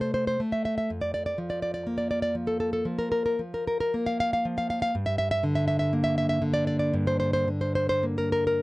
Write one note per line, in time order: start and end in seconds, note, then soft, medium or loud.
0.00 0.39 C3 soft
0.00 0.39 A3 soft
0.00 0.90 A4 soft
0.00 0.13 C5 medium
0.14 0.26 C5 medium
0.27 0.40 C5 medium
0.40 0.90 A3 soft
0.52 0.64 E5 medium
0.65 0.76 E5 medium
0.78 0.90 E5 medium
0.90 2.82 F2 medium
1.01 1.13 D5 medium
1.14 1.25 D5 medium
1.26 1.38 D5 medium
1.38 2.34 F3 soft
1.50 1.61 D5 medium
1.62 1.73 D5 medium
1.74 1.86 D5 medium
1.87 3.40 A#3 soft
1.98 2.10 D5 medium
2.11 2.21 D5 medium
2.22 2.35 D5 medium
2.35 2.84 F3 soft
2.47 2.59 A4 medium
2.60 2.72 A4 medium
2.73 2.86 A4 medium
2.85 3.38 F3 soft
2.99 3.10 A#4 medium
3.12 3.24 A#4 medium
3.26 3.40 A#4 medium
3.39 4.44 F3 soft
3.54 3.66 A#4 medium
3.67 3.79 A#4 medium
3.80 3.94 A#4 medium
3.94 4.94 A#3 soft
4.06 4.19 F5 medium
4.20 4.32 F5 medium
4.33 4.46 F5 medium
4.45 4.94 F3 soft
4.58 4.69 F5 medium
4.70 4.81 F5 medium
4.82 4.95 F5 medium
4.95 6.91 G2 medium
5.06 5.17 E5 medium
5.18 5.30 E5 medium
5.31 5.43 E5 medium
5.43 6.41 D3 soft
5.55 5.66 E5 medium
5.68 5.78 E5 medium
5.79 5.92 E5 medium
5.93 7.49 A#3 medium
6.04 6.17 E5 medium
6.18 6.28 E5 medium
6.29 6.42 E5 medium
6.42 7.47 D3 medium
6.54 6.66 D5 medium
6.67 6.78 D5 medium
6.79 6.94 D5 medium
6.94 8.62 G2 medium
7.07 7.19 C5 medium
7.20 7.32 C5 medium
7.33 7.48 C5 medium
7.48 8.62 D3 medium
7.61 7.74 C5 medium
7.75 7.88 C5 medium
7.89 8.04 C5 medium
8.03 8.62 A#3 soft
8.18 8.31 A#4 medium
8.32 8.46 A#4 medium
8.47 8.62 A#4 medium